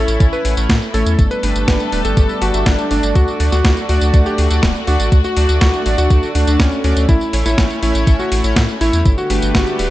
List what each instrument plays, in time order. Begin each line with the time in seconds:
Already playing: analog polysynth A3 C#4 E4 C#5, string section A3 E4, electric grand piano A4
0.08 analog synth bass A1, closed hi-hat, tambourine
0.20 analog synth bass A1, kick, closed hi-hat, tambourine
0.33 electric grand piano B4, tambourine
0.45 analog synth bass A1, analog polysynth A3 C#4 E4 F#5, open hi-hat
0.57 analog synth bass A1, analog polysynth A3 C#4 E4 C#5, closed hi-hat, tambourine
0.70 analog synth bass A2, kick, snare, closed hi-hat, tambourine
0.82 tambourine
0.94 analog synth bass A1, analog polysynth A3 C#4 E4 C#5, electric grand piano A4, open hi-hat
1.06 analog synth bass E2, closed hi-hat, tambourine
1.19 analog synth bass G1, string section G3 B3 D4 A4, kick, closed hi-hat, tambourine
1.31 electric grand piano B4, closed hi-hat, tambourine
1.43 analog synth bass G1, analog polysynth A3 D4 G4 B4, open hi-hat
1.56 analog synth bass G1, closed hi-hat, tambourine
1.68 analog synth bass G1, electric grand piano B4, kick, snare, closed hi-hat, tambourine
1.80 closed hi-hat, tambourine
1.92 analog synth bass D1, analog polysynth A3 D4 G4 B4, open hi-hat
2.05 analog synth bass G1, electric grand piano A4, closed hi-hat, tambourine
2.17 analog synth bass G1, kick, closed hi-hat, tambourine
2.29 tambourine
2.42 analog synth bass G1, analog polysynth A3 D4 G4 B4, electric grand piano F#4, open hi-hat
2.54 analog synth bass G1, analog polysynth A3 D4 G4 E5, closed hi-hat, tambourine
2.66 analog synth bass G1, electric grand piano D4, kick, snare, closed hi-hat, tambourine
2.79 closed hi-hat, tambourine
2.91 analog synth bass G1, analog polysynth A3 D4 F#4 D5, electric grand piano D4, open hi-hat
3.03 analog synth bass G1, closed hi-hat, tambourine
3.15 analog synth bass D2, string section F#4, electric grand piano F#4, kick, closed hi-hat, tambourine
3.28 tambourine
3.40 analog synth bass D2, analog polysynth A3 D4 F#4 D5, open hi-hat
3.52 analog synth bass D2, electric grand piano F#4, snare, closed hi-hat, tambourine
3.65 analog synth bass D2, kick, snare, closed hi-hat, tambourine
3.77 closed hi-hat, tambourine
3.89 analog synth bass D2, analog polysynth A3 D4 F#4 D5, electric grand piano F#4, open hi-hat
4.01 analog synth bass D2, closed hi-hat, tambourine
4.14 analog synth bass D2, kick, closed hi-hat, tambourine
4.26 electric grand piano G4, tambourine
4.38 analog synth bass D2, analog polysynth A3 D4 F#4 F#5, open hi-hat
4.51 analog synth bass D2, analog polysynth A3 D4 F#4 D5, closed hi-hat, tambourine
4.63 analog synth bass D1, kick, snare, closed hi-hat, tambourine
4.75 tambourine
4.87 analog synth bass D2, analog polysynth A3 D4 F#4 D5, electric grand piano F#4, open hi-hat
5.00 analog synth bass A1, closed hi-hat, tambourine
5.12 analog synth bass D2, kick, closed hi-hat, tambourine
5.24 electric grand piano F#4, tambourine
5.37 analog synth bass D2, analog polysynth A3 D4 F#4 D5, open hi-hat
5.49 analog synth bass D2, closed hi-hat, tambourine
5.61 analog synth bass D2, electric grand piano F#4, kick, snare, closed hi-hat, tambourine
5.74 closed hi-hat, tambourine
5.86 analog synth bass A1, analog polysynth A3 D4 F#4 D5, open hi-hat
5.98 analog synth bass D2, electric grand piano F#4, closed hi-hat, tambourine
6.10 analog synth bass D2, kick, closed hi-hat, tambourine
6.23 tambourine
6.35 analog synth bass D2, analog polysynth A3 D4 F#4 F#5, electric grand piano D4, open hi-hat
6.47 analog synth bass D2, analog polysynth A3 D4 F#4 D5, closed hi-hat, tambourine
6.60 analog synth bass D2, electric grand piano C#4, kick, snare, closed hi-hat, tambourine
6.72 tambourine
6.84 analog synth bass D2, analog polysynth A3 D4 F#4 D5, electric grand piano C#4, open hi-hat
6.97 analog synth bass D2, closed hi-hat, tambourine
7.09 analog synth bass A1, string section C#4 E4, electric grand piano E4, kick, closed hi-hat, tambourine
7.21 tambourine
7.33 analog synth bass A1, analog polysynth A3 C#4 E4 C#5, open hi-hat
7.46 analog synth bass A1, electric grand piano E4, snare, closed hi-hat, tambourine
7.58 analog synth bass A1, kick, snare, closed hi-hat, tambourine
7.70 closed hi-hat, tambourine
7.83 analog synth bass A1, analog polysynth A3 C#4 E4 C#5, electric grand piano E4, open hi-hat
7.95 analog synth bass A1, closed hi-hat, tambourine
8.07 analog synth bass A1, kick, closed hi-hat, tambourine
8.19 electric grand piano F#4, tambourine
8.32 analog synth bass A1, analog polysynth A3 C#4 E4 F#5, open hi-hat
8.44 analog synth bass A1, analog polysynth A3 C#4 E4 C#5, closed hi-hat, tambourine
8.56 analog synth bass A2, kick, snare, closed hi-hat, tambourine
8.69 tambourine
8.81 analog synth bass A1, analog polysynth A3 C#4 E4 C#5, electric grand piano E4, open hi-hat
8.93 analog synth bass E2, closed hi-hat, tambourine
9.05 analog synth bass G1, string section D3 G3 B3 G4, kick, closed hi-hat, tambourine
9.18 electric grand piano F#4, tambourine
9.30 analog synth bass G1, analog polysynth A3 D4 G4 B4, open hi-hat
9.42 analog synth bass G1, closed hi-hat, tambourine
9.55 analog synth bass G1, electric grand piano F#4, kick, snare, closed hi-hat, tambourine
9.67 closed hi-hat, tambourine
9.79 analog synth bass D1, analog polysynth A3 D4 G4 B4, open hi-hat